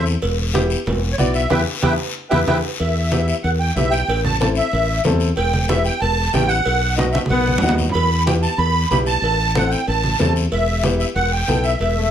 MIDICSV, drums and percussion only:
0, 0, Header, 1, 2, 480
1, 0, Start_track
1, 0, Key_signature, 1, "minor"
1, 0, Tempo, 321716
1, 328, Time_signature, 4, 2, 24, 8
1, 18067, End_track
2, 0, Start_track
2, 0, Title_t, "Drums"
2, 86, Note_on_c, 9, 73, 73
2, 235, Note_off_c, 9, 73, 0
2, 327, Note_on_c, 9, 74, 77
2, 334, Note_on_c, 9, 56, 109
2, 476, Note_off_c, 9, 74, 0
2, 483, Note_off_c, 9, 56, 0
2, 575, Note_on_c, 9, 63, 35
2, 724, Note_off_c, 9, 63, 0
2, 804, Note_on_c, 9, 73, 71
2, 820, Note_on_c, 9, 63, 93
2, 953, Note_off_c, 9, 73, 0
2, 970, Note_off_c, 9, 63, 0
2, 1049, Note_on_c, 9, 73, 76
2, 1198, Note_off_c, 9, 73, 0
2, 1284, Note_on_c, 9, 74, 71
2, 1299, Note_on_c, 9, 63, 34
2, 1299, Note_on_c, 9, 64, 88
2, 1301, Note_on_c, 9, 56, 88
2, 1433, Note_off_c, 9, 74, 0
2, 1448, Note_off_c, 9, 63, 0
2, 1448, Note_off_c, 9, 64, 0
2, 1451, Note_off_c, 9, 56, 0
2, 1763, Note_on_c, 9, 63, 78
2, 1765, Note_on_c, 9, 73, 78
2, 1912, Note_off_c, 9, 63, 0
2, 1914, Note_off_c, 9, 73, 0
2, 2004, Note_on_c, 9, 73, 71
2, 2153, Note_off_c, 9, 73, 0
2, 2236, Note_on_c, 9, 74, 101
2, 2242, Note_on_c, 9, 63, 102
2, 2245, Note_on_c, 9, 65, 94
2, 2385, Note_off_c, 9, 74, 0
2, 2391, Note_off_c, 9, 63, 0
2, 2395, Note_off_c, 9, 65, 0
2, 2720, Note_on_c, 9, 74, 109
2, 2723, Note_on_c, 9, 63, 105
2, 2731, Note_on_c, 9, 65, 97
2, 2869, Note_off_c, 9, 74, 0
2, 2872, Note_off_c, 9, 63, 0
2, 2880, Note_off_c, 9, 65, 0
2, 3448, Note_on_c, 9, 74, 103
2, 3451, Note_on_c, 9, 65, 91
2, 3460, Note_on_c, 9, 63, 103
2, 3598, Note_off_c, 9, 74, 0
2, 3600, Note_off_c, 9, 65, 0
2, 3609, Note_off_c, 9, 63, 0
2, 3685, Note_on_c, 9, 74, 102
2, 3691, Note_on_c, 9, 65, 98
2, 3696, Note_on_c, 9, 63, 104
2, 3834, Note_off_c, 9, 74, 0
2, 3840, Note_off_c, 9, 65, 0
2, 3845, Note_off_c, 9, 63, 0
2, 4168, Note_on_c, 9, 74, 67
2, 4174, Note_on_c, 9, 56, 92
2, 4186, Note_on_c, 9, 63, 35
2, 4317, Note_off_c, 9, 74, 0
2, 4323, Note_off_c, 9, 56, 0
2, 4335, Note_off_c, 9, 63, 0
2, 4652, Note_on_c, 9, 63, 88
2, 4652, Note_on_c, 9, 73, 68
2, 4801, Note_off_c, 9, 63, 0
2, 4801, Note_off_c, 9, 73, 0
2, 4893, Note_on_c, 9, 73, 75
2, 5042, Note_off_c, 9, 73, 0
2, 5134, Note_on_c, 9, 74, 67
2, 5139, Note_on_c, 9, 56, 76
2, 5156, Note_on_c, 9, 63, 35
2, 5283, Note_off_c, 9, 74, 0
2, 5289, Note_off_c, 9, 56, 0
2, 5305, Note_off_c, 9, 63, 0
2, 5615, Note_on_c, 9, 73, 68
2, 5621, Note_on_c, 9, 63, 79
2, 5630, Note_on_c, 9, 66, 63
2, 5764, Note_off_c, 9, 73, 0
2, 5770, Note_off_c, 9, 63, 0
2, 5779, Note_off_c, 9, 66, 0
2, 5849, Note_on_c, 9, 73, 68
2, 5998, Note_off_c, 9, 73, 0
2, 6081, Note_on_c, 9, 74, 71
2, 6099, Note_on_c, 9, 63, 31
2, 6109, Note_on_c, 9, 56, 108
2, 6230, Note_off_c, 9, 74, 0
2, 6248, Note_off_c, 9, 63, 0
2, 6258, Note_off_c, 9, 56, 0
2, 6334, Note_on_c, 9, 63, 75
2, 6334, Note_on_c, 9, 64, 69
2, 6483, Note_off_c, 9, 63, 0
2, 6483, Note_off_c, 9, 64, 0
2, 6561, Note_on_c, 9, 73, 67
2, 6586, Note_on_c, 9, 63, 88
2, 6710, Note_off_c, 9, 73, 0
2, 6735, Note_off_c, 9, 63, 0
2, 6795, Note_on_c, 9, 73, 69
2, 6945, Note_off_c, 9, 73, 0
2, 7035, Note_on_c, 9, 74, 70
2, 7054, Note_on_c, 9, 63, 36
2, 7059, Note_on_c, 9, 56, 85
2, 7184, Note_off_c, 9, 74, 0
2, 7203, Note_off_c, 9, 63, 0
2, 7209, Note_off_c, 9, 56, 0
2, 7515, Note_on_c, 9, 73, 74
2, 7529, Note_on_c, 9, 66, 68
2, 7535, Note_on_c, 9, 63, 77
2, 7535, Note_on_c, 9, 64, 85
2, 7664, Note_off_c, 9, 73, 0
2, 7678, Note_off_c, 9, 66, 0
2, 7684, Note_off_c, 9, 63, 0
2, 7684, Note_off_c, 9, 64, 0
2, 7757, Note_on_c, 9, 73, 67
2, 7906, Note_off_c, 9, 73, 0
2, 7995, Note_on_c, 9, 74, 69
2, 8012, Note_on_c, 9, 56, 106
2, 8014, Note_on_c, 9, 63, 34
2, 8144, Note_off_c, 9, 74, 0
2, 8162, Note_off_c, 9, 56, 0
2, 8163, Note_off_c, 9, 63, 0
2, 8257, Note_on_c, 9, 63, 75
2, 8406, Note_off_c, 9, 63, 0
2, 8477, Note_on_c, 9, 73, 71
2, 8493, Note_on_c, 9, 63, 89
2, 8626, Note_off_c, 9, 73, 0
2, 8642, Note_off_c, 9, 63, 0
2, 8721, Note_on_c, 9, 73, 66
2, 8870, Note_off_c, 9, 73, 0
2, 8960, Note_on_c, 9, 74, 69
2, 8982, Note_on_c, 9, 63, 32
2, 8984, Note_on_c, 9, 56, 77
2, 9109, Note_off_c, 9, 74, 0
2, 9132, Note_off_c, 9, 63, 0
2, 9133, Note_off_c, 9, 56, 0
2, 9445, Note_on_c, 9, 73, 75
2, 9456, Note_on_c, 9, 66, 66
2, 9476, Note_on_c, 9, 63, 86
2, 9594, Note_off_c, 9, 73, 0
2, 9605, Note_off_c, 9, 66, 0
2, 9625, Note_off_c, 9, 63, 0
2, 9687, Note_on_c, 9, 73, 69
2, 9836, Note_off_c, 9, 73, 0
2, 9926, Note_on_c, 9, 74, 73
2, 9931, Note_on_c, 9, 56, 103
2, 9963, Note_on_c, 9, 63, 37
2, 10075, Note_off_c, 9, 74, 0
2, 10080, Note_off_c, 9, 56, 0
2, 10112, Note_off_c, 9, 63, 0
2, 10396, Note_on_c, 9, 73, 74
2, 10426, Note_on_c, 9, 63, 92
2, 10546, Note_off_c, 9, 73, 0
2, 10575, Note_off_c, 9, 63, 0
2, 10633, Note_on_c, 9, 73, 63
2, 10667, Note_on_c, 9, 63, 85
2, 10783, Note_off_c, 9, 73, 0
2, 10816, Note_off_c, 9, 63, 0
2, 10830, Note_on_c, 9, 63, 93
2, 10882, Note_on_c, 9, 74, 65
2, 10897, Note_on_c, 9, 56, 86
2, 10979, Note_off_c, 9, 63, 0
2, 11032, Note_off_c, 9, 74, 0
2, 11046, Note_off_c, 9, 56, 0
2, 11153, Note_on_c, 9, 63, 72
2, 11302, Note_off_c, 9, 63, 0
2, 11311, Note_on_c, 9, 64, 98
2, 11364, Note_on_c, 9, 73, 72
2, 11394, Note_on_c, 9, 66, 64
2, 11460, Note_off_c, 9, 64, 0
2, 11470, Note_on_c, 9, 64, 96
2, 11513, Note_off_c, 9, 73, 0
2, 11543, Note_off_c, 9, 66, 0
2, 11609, Note_on_c, 9, 73, 68
2, 11619, Note_off_c, 9, 64, 0
2, 11631, Note_on_c, 9, 64, 70
2, 11758, Note_off_c, 9, 73, 0
2, 11776, Note_off_c, 9, 64, 0
2, 11776, Note_on_c, 9, 64, 86
2, 11843, Note_on_c, 9, 74, 74
2, 11857, Note_on_c, 9, 63, 33
2, 11863, Note_on_c, 9, 56, 103
2, 11926, Note_off_c, 9, 64, 0
2, 11992, Note_off_c, 9, 74, 0
2, 12007, Note_off_c, 9, 63, 0
2, 12012, Note_off_c, 9, 56, 0
2, 12335, Note_on_c, 9, 73, 75
2, 12342, Note_on_c, 9, 63, 95
2, 12484, Note_off_c, 9, 73, 0
2, 12491, Note_off_c, 9, 63, 0
2, 12574, Note_on_c, 9, 73, 65
2, 12723, Note_off_c, 9, 73, 0
2, 12820, Note_on_c, 9, 74, 73
2, 12821, Note_on_c, 9, 56, 74
2, 12832, Note_on_c, 9, 63, 35
2, 12969, Note_off_c, 9, 74, 0
2, 12971, Note_off_c, 9, 56, 0
2, 12981, Note_off_c, 9, 63, 0
2, 13290, Note_on_c, 9, 73, 69
2, 13298, Note_on_c, 9, 66, 68
2, 13308, Note_on_c, 9, 63, 85
2, 13439, Note_off_c, 9, 73, 0
2, 13448, Note_off_c, 9, 66, 0
2, 13457, Note_off_c, 9, 63, 0
2, 13522, Note_on_c, 9, 73, 73
2, 13671, Note_off_c, 9, 73, 0
2, 13765, Note_on_c, 9, 74, 65
2, 13784, Note_on_c, 9, 56, 102
2, 13784, Note_on_c, 9, 63, 37
2, 13914, Note_off_c, 9, 74, 0
2, 13933, Note_off_c, 9, 56, 0
2, 13933, Note_off_c, 9, 63, 0
2, 14254, Note_on_c, 9, 63, 95
2, 14254, Note_on_c, 9, 73, 66
2, 14403, Note_off_c, 9, 63, 0
2, 14403, Note_off_c, 9, 73, 0
2, 14494, Note_on_c, 9, 73, 67
2, 14643, Note_off_c, 9, 73, 0
2, 14733, Note_on_c, 9, 56, 82
2, 14741, Note_on_c, 9, 63, 31
2, 14749, Note_on_c, 9, 74, 69
2, 14882, Note_off_c, 9, 56, 0
2, 14890, Note_off_c, 9, 63, 0
2, 14898, Note_off_c, 9, 74, 0
2, 14972, Note_on_c, 9, 63, 69
2, 15122, Note_off_c, 9, 63, 0
2, 15210, Note_on_c, 9, 73, 72
2, 15214, Note_on_c, 9, 66, 66
2, 15219, Note_on_c, 9, 63, 83
2, 15219, Note_on_c, 9, 64, 82
2, 15359, Note_off_c, 9, 73, 0
2, 15363, Note_off_c, 9, 66, 0
2, 15368, Note_off_c, 9, 63, 0
2, 15368, Note_off_c, 9, 64, 0
2, 15456, Note_on_c, 9, 73, 74
2, 15605, Note_off_c, 9, 73, 0
2, 15694, Note_on_c, 9, 56, 99
2, 15697, Note_on_c, 9, 63, 36
2, 15701, Note_on_c, 9, 74, 67
2, 15843, Note_off_c, 9, 56, 0
2, 15846, Note_off_c, 9, 63, 0
2, 15850, Note_off_c, 9, 74, 0
2, 16165, Note_on_c, 9, 63, 87
2, 16167, Note_on_c, 9, 73, 72
2, 16315, Note_off_c, 9, 63, 0
2, 16316, Note_off_c, 9, 73, 0
2, 16412, Note_on_c, 9, 73, 73
2, 16561, Note_off_c, 9, 73, 0
2, 16650, Note_on_c, 9, 74, 70
2, 16653, Note_on_c, 9, 56, 74
2, 16675, Note_on_c, 9, 63, 34
2, 16799, Note_off_c, 9, 74, 0
2, 16802, Note_off_c, 9, 56, 0
2, 16825, Note_off_c, 9, 63, 0
2, 17122, Note_on_c, 9, 73, 72
2, 17142, Note_on_c, 9, 63, 84
2, 17272, Note_off_c, 9, 73, 0
2, 17291, Note_off_c, 9, 63, 0
2, 17364, Note_on_c, 9, 73, 66
2, 17514, Note_off_c, 9, 73, 0
2, 17593, Note_on_c, 9, 74, 68
2, 17618, Note_on_c, 9, 56, 93
2, 17632, Note_on_c, 9, 63, 34
2, 17742, Note_off_c, 9, 74, 0
2, 17767, Note_off_c, 9, 56, 0
2, 17781, Note_off_c, 9, 63, 0
2, 18067, End_track
0, 0, End_of_file